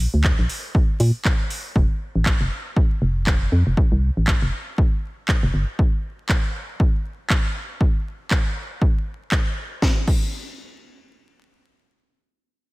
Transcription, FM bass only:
0.14 D2
0.39 A#1
1.00 A#2
1.76 F1
2.15 A1
2.41 F1
3.02 F1
3.52 F2
3.67 F1
3.92 C2
4.17 A1
4.42 F1
5.43 F1
5.54 G1

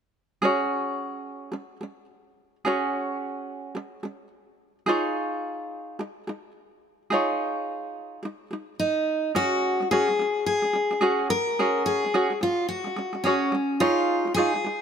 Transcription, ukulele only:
0.42 C#4 F#4 G#4 C#5
1.52 C#4 G#4
1.81 C#4 G#4
2.65 C#4 F#4 G#4 C#5
3.75 C#4 G#4
4.03 C#4 G#4
4.86 D#4 F4 G#4 C#5
5.99 D#4 G#4
6.27 D#4 G#4
7.10 D#4 F4 G#4 C#5
8.23 D#4 G#4
8.51 D#4 G#4
9.35 C#4 F#4 G#4 C#5
9.80 C#4 G#4
9.91 C#4 F#4 G#4 C#5
10.08 C#4 G#4
10.19 C#4 G#4
10.62 C#4 G#4
10.73 C#4 G#4
10.91 C#4 G#4
11.01 C#4 F#4 G#4 C#5
11.30 C#4 G#4
11.59 C#4 F#4 G#4 C#5
12.04 C#4 G#4
12.14 C#4 F#4 G#4 C#5
12.30 C#4 G#4
12.41 C#4 G#4
12.84 C#4 G#4
12.96 C#4 G#4
13.13 C#4 G#4
13.25 C#4 F#4 G#4 C#5
13.52 C#4 G#4
13.80 D#4 F4 G#4 C#5
14.25 D#4 G#4
14.37 D#4 F4 G#4 C#5
14.64 D#4 G#4

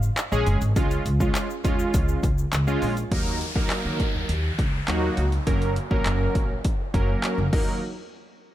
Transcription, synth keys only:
0.32 G#3 C#4 G#4
0.76 G#3 C#4 F4
1.20 G#3 C#4 F4
1.64 G#3 C#4 F4
2.67 G#3 C#4 F4
3.11 F#3 A#3 D#4 A#4
3.55 F#3 A#3 D#4 A#4
4.88 F#3 A#3 D#4 F#4
5.47 F#3 A#3 C#4 A#4
5.91 F#3 A#3 C#4 A#4
6.94 F#3 A#3 C#4 A#4
7.53 F#3 A#3 D#4 A#4

